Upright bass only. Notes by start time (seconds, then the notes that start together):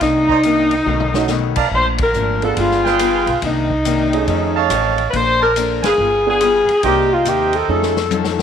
0.01 C2
0.86 B1
1.71 A#1
2.13 G#1
2.57 G1
3.26 B1
3.42 C2
4.27 F2
4.69 A1
5.13 A#1
5.83 F#1
5.98 G1
6.68 muted upright bass stroke
6.83 C2
7.25 D#2
7.68 F2